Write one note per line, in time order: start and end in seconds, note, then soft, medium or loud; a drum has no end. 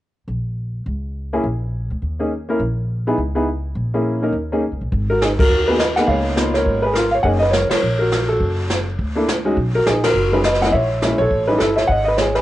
0.27 0.83 A#1 medium
0.86 1.41 C#2 medium
1.33 1.43 A#3 medium
1.33 1.43 C#4 soft
1.33 1.43 E4 soft
1.33 1.43 G#4 medium
1.44 1.87 A#1 medium
1.91 2.01 D2 medium
2.02 2.57 D#2 medium
2.19 2.30 A#3 soft
2.19 2.30 C#4 soft
2.19 2.30 D#4 soft
2.19 2.30 G#4 soft
2.49 2.59 A#3 medium
2.49 2.59 C#4 soft
2.49 2.59 E4 soft
2.49 2.60 A#4 medium
2.59 3.15 A#1 medium
3.07 3.17 B3 medium
3.07 3.17 D#4 soft
3.07 3.17 E4 medium
3.07 3.17 G#4 medium
3.18 3.73 C#2 medium
3.35 3.46 B3 soft
3.35 3.46 D#4 soft
3.35 3.46 E4 soft
3.35 3.46 G#4 medium
3.75 4.31 A#1 medium
3.94 4.21 A#3 soft
3.94 4.21 C#4 soft
3.94 4.21 E4 soft
3.94 4.21 G#4 medium
4.22 4.33 A#3 medium
4.22 4.33 C#4 soft
4.22 4.33 D#4 soft
4.22 4.33 A#4 medium
4.33 4.69 D#2 medium
4.52 4.62 A#3 medium
4.52 4.62 C#4 medium
4.52 4.62 D#4 medium
4.52 4.63 G#4 medium
4.72 4.81 C#2 soft
4.81 4.91 A#1 medium
4.92 5.47 G#1 medium
4.92 brush sweep soft
4.92 kick soft
5.10 5.21 F#4 medium
5.10 5.21 A#4 medium
5.22 5.29 D#4 medium
5.22 5.27 G#4 medium
5.22 snare medium
5.22 hi-hat pedal medium
5.39 5.67 F#4 medium
5.39 5.69 A#4 loud
5.39 kick medium
5.39 ride medium
5.49 6.05 D#2 medium
5.49 brush sweep soft
5.68 5.78 A#3 soft
5.68 5.78 B3 soft
5.68 5.78 D#4 soft
5.68 5.79 F#4 medium
5.68 5.75 G#4 medium
5.68 5.73 B4 medium
5.79 5.86 B4 medium
5.79 5.84 D#5 medium
5.79 snare medium
5.79 hi-hat pedal medium
5.96 6.35 A#3 medium
5.96 6.35 B3 medium
5.96 6.35 D#4 medium
5.96 6.35 G#4 medium
5.96 6.09 D#5 medium
5.96 6.07 F#5 medium
5.96 snare soft
6.07 6.63 C#2 medium
6.07 6.53 C#5 medium
6.07 6.56 F5 medium
6.07 brush sweep soft
6.07 kick soft
6.36 6.80 A#3 medium
6.36 6.80 B3 medium
6.36 6.80 D#4 soft
6.36 6.80 F4 medium
6.36 snare medium
6.36 hi-hat pedal soft
6.54 6.83 A#4 medium
6.54 6.81 C#5 medium
6.54 snare soft
6.66 7.21 G#1 medium
6.66 brush sweep soft
6.66 kick soft
6.82 6.95 G#4 medium
6.82 6.94 B4 medium
6.93 7.13 F4 medium
6.93 7.11 A#4 medium
6.93 snare medium
6.93 hi-hat pedal medium
7.11 7.19 C#5 medium
7.11 7.16 F5 medium
7.23 7.67 F#1 medium
7.23 7.40 A#3 medium
7.23 7.40 C#4 medium
7.23 7.40 D#4 medium
7.23 7.40 G#4 medium
7.23 7.30 D#5 medium
7.23 7.28 F#5 medium
7.23 brush sweep soft
7.23 kick soft
7.39 7.53 B4 medium
7.39 7.51 D#5 medium
7.51 7.70 A#4 medium
7.51 7.68 C#5 medium
7.51 snare medium
7.51 hi-hat pedal medium
7.70 7.97 A#4 medium
7.70 7.97 C#5 medium
7.70 muted upright bass stroke soft
7.70 snare medium
7.70 ride medium
7.82 8.37 A#1 medium
7.82 brush sweep soft
7.99 8.28 F#4 medium
7.99 8.26 A#4 medium
8.12 snare medium
8.12 hi-hat pedal medium
8.28 8.84 F#4 medium
8.28 8.83 A4 medium
8.40 8.95 F#1 medium
8.40 brush sweep soft
8.40 kick soft
8.70 snare medium
8.70 hi-hat pedal medium
8.99 9.54 D2 medium
8.99 brush sweep soft
8.99 kick soft
9.15 9.26 A#3 medium
9.15 9.26 D4 medium
9.15 9.26 E4 soft
9.15 9.26 A4 medium
9.28 snare medium
9.28 hi-hat pedal medium
9.45 9.55 G#3 medium
9.45 9.55 C#4 medium
9.45 9.56 D#4 medium
9.45 9.56 F#4 medium
9.57 9.83 B1 medium
9.57 brush sweep soft
9.57 kick soft
9.75 9.86 F#4 medium
9.75 9.86 A#4 medium
9.86 10.12 A#1 medium
9.86 10.04 D#4 medium
9.86 10.02 G#4 medium
9.86 snare medium
9.86 hi-hat pedal medium
10.04 10.32 F#4 medium
10.04 10.33 A#4 medium
10.04 snare medium
10.04 ride medium
10.14 10.69 F#1 medium
10.14 brush sweep soft
10.32 10.42 G#3 medium
10.32 10.43 C#4 medium
10.32 10.42 D#4 soft
10.32 10.43 F#4 medium
10.32 10.38 B4 medium
10.36 10.40 G#4 medium
10.43 10.62 B4 medium
10.43 10.62 D#5 medium
10.43 snare medium
10.43 hi-hat pedal medium
10.54 snare soft
10.61 10.71 G#3 medium
10.61 10.71 A#3 medium
10.61 10.71 C#4 medium
10.61 10.72 E4 medium
10.61 10.73 F#5 medium
10.61 snare soft
10.64 10.73 D#5 medium
10.64 snare soft
10.72 11.16 A#1 medium
10.72 11.17 C#5 medium
10.72 11.20 E5 medium
10.72 brush sweep soft
10.72 kick soft
11.01 11.17 G#3 medium
11.01 11.17 A#3 soft
11.01 11.18 C#4 soft
11.01 11.18 E4 medium
11.01 snare medium
11.01 hi-hat pedal medium
11.18 11.29 A#1 medium
11.18 11.47 A4 medium
11.18 11.48 C#5 loud
11.31 11.57 A1 medium
11.31 brush sweep soft
11.31 kick soft
11.47 11.58 E3 medium
11.47 11.58 G3 medium
11.47 11.58 C#4 soft
11.47 11.59 D#4 medium
11.47 11.60 G4 medium
11.47 11.58 B4 medium
11.58 11.86 G1 medium
11.58 11.77 E4 medium
11.58 11.75 A4 medium
11.58 snare medium
11.58 hi-hat pedal medium
11.76 11.88 C#5 medium
11.76 11.88 E5 medium
11.76 snare soft
11.87 12.42 G#1 medium
11.87 12.03 D#5 medium
11.87 12.04 F#5 medium
11.87 brush sweep soft
11.87 kick soft
12.04 12.18 B4 medium
12.04 12.17 D#5 medium
12.17 12.35 G#4 medium
12.17 12.35 C#5 medium
12.17 snare medium
12.17 hi-hat pedal medium
12.35 12.42 G#4 medium
12.35 12.42 B4 medium
12.35 snare soft